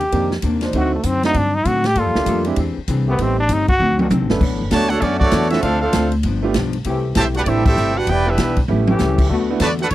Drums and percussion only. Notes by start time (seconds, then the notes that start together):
0.01 ride
0.12 kick, ride
0.31 snare
0.42 kick, hi-hat pedal, ride
0.61 snare, ride
0.73 kick, ride
1.03 kick, hi-hat pedal, ride
1.23 snare, ride
1.34 kick, ride
1.65 kick, hi-hat pedal, ride
1.84 snare, ride
1.95 kick, ride
2.15 snare
2.26 kick, hi-hat pedal, ride
2.45 ride
2.56 kick, ride
2.88 kick, hi-hat pedal, ride
3.19 kick, ride
3.49 kick, hi-hat pedal, ride
3.68 kick, ride
3.80 high tom
3.99 high tom
4.10 hi-hat pedal, high tom
4.30 snare
4.41 kick, crash
4.71 kick, snare, hi-hat pedal, ride
4.90 ride
5.02 kick, ride
5.21 kick
5.32 kick, snare, hi-hat pedal, ride
5.42 snare
5.50 snare, ride
5.63 kick, ride
5.93 kick, snare, hi-hat pedal, ride
6.12 ride
6.23 kick, ride
6.54 kick, snare, hi-hat pedal, ride
6.73 ride
6.84 kick, ride
7.15 kick, snare, hi-hat pedal, ride
7.34 ride
7.46 kick, ride
7.66 kick, crash
7.77 hi-hat pedal
8.07 kick, ride
8.38 kick, snare, hi-hat pedal, ride
8.57 kick, ride
8.68 high tom
8.87 high tom
8.99 snare, hi-hat pedal
9.18 kick, crash
9.30 kick
9.60 kick, snare, hi-hat pedal, ride
9.79 ride
9.90 kick, ride